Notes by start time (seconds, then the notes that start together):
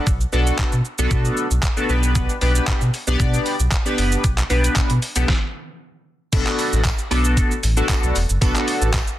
0.07 B1, kick, shaker
0.21 shaker
0.33 B1 B3 D4 F#4 A4, shaker
0.47 shaker
0.59 B2, kick, clap, shaker
0.72 B2, shaker
0.85 shaker
0.98 B1 B3 D4 F#4 A4, shaker
1.11 B2, kick, shaker
1.25 shaker
1.37 shaker
1.51 B1, shaker
1.63 kick, clap, shaker
1.77 B3 D4 F#4 A4, shaker
1.89 B1 B3 D4 G4 B4, shaker
2.03 shaker
2.15 kick, shaker
2.29 shaker
2.41 B1 B3 D4 G4 B4, open hi-hat, shaker
2.55 shaker
2.67 B2, kick, clap, shaker
2.81 B2, shaker
2.94 open hi-hat, shaker
3.07 B1 B3 D4 G4 D5, shaker
3.20 B2, kick, shaker
3.34 shaker
3.46 open hi-hat, shaker
3.60 B1, shaker
3.72 kick, clap, shaker
3.85 B3 D4 G4 B4, shaker
3.98 F#1, open hi-hat, shaker
4.12 shaker
4.24 B1, kick, closed hi-hat, shaker
4.38 clap, closed hi-hat, shaker
4.50 B1 B3 D4 G4 B4, open hi-hat, shaker
4.64 closed hi-hat, shaker
4.76 B2, kick, clap, closed hi-hat, shaker
4.90 B2, closed hi-hat, shaker
5.02 open hi-hat, shaker
5.16 B1 B3 D4 G4 A4, closed hi-hat, shaker
5.28 kick, snare
6.32 B1 B3 D4 F#4 A4, kick, closed hi-hat, crash, tambourine, shaker
6.47 clap, shaker
6.59 open hi-hat, tambourine, shaker
6.73 A1, shaker
6.85 kick, clap, closed hi-hat, tambourine, shaker
6.98 shaker
7.11 B1 B3 D4 F#4 A4, open hi-hat, tambourine, shaker
7.25 shaker
7.37 kick, closed hi-hat, shaker
7.51 shaker
7.63 A1, open hi-hat, tambourine, shaker
7.77 B3 D4 F#4 A4, shaker
7.89 kick, clap, closed hi-hat, tambourine, shaker
8.03 B1, shaker
8.15 E1, open hi-hat, tambourine, shaker
8.29 F#1, shaker
8.41 B1 B3 D4 F#4 A4, kick, closed hi-hat, tambourine, shaker
8.56 clap, shaker
8.68 open hi-hat, tambourine, shaker
8.81 A1, shaker
8.93 kick, clap, closed hi-hat, tambourine, shaker
9.07 shaker